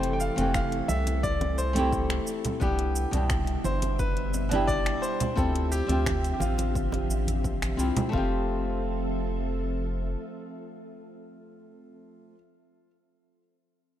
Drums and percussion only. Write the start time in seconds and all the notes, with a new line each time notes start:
0.03 closed hi-hat
0.20 cabasa
0.38 closed hi-hat, high conga, cabasa
0.54 finger snap, kick, cabasa
0.72 closed hi-hat
0.89 muted conga, cabasa
1.07 closed hi-hat, muted conga, cabasa
1.24 kick, cabasa
1.41 closed hi-hat, muted conga
1.58 cabasa
1.76 closed hi-hat, high conga, cabasa
1.93 kick, cabasa
2.10 finger snap, closed hi-hat
2.27 cabasa
2.45 closed hi-hat, low conga, cabasa
2.61 kick, cabasa
2.79 closed hi-hat
2.96 cabasa
3.13 closed hi-hat, high conga, cabasa
3.30 finger snap, kick, cabasa
3.47 closed hi-hat
3.64 muted conga, cabasa
3.82 closed hi-hat, muted conga, cabasa
3.99 kick, cabasa
4.17 closed hi-hat
4.34 muted conga, cabasa
4.51 closed hi-hat, muted conga, cabasa
4.68 kick, cabasa
4.86 finger snap, closed hi-hat
5.03 cabasa
5.20 closed hi-hat, low conga, cabasa
5.37 kick, cabasa
5.55 closed hi-hat
5.72 cabasa
5.89 closed hi-hat, high conga, cabasa
6.06 finger snap, kick, cabasa
6.24 closed hi-hat, cabasa
6.40 muted conga, cabasa
6.58 closed hi-hat, muted conga, cabasa
6.75 kick, cabasa
6.92 closed hi-hat, muted conga
7.10 cabasa
7.27 closed hi-hat, high conga, cabasa
7.44 kick, cabasa
7.62 finger snap, closed hi-hat, cabasa
7.79 cabasa
7.97 closed hi-hat, low conga, cabasa
8.13 kick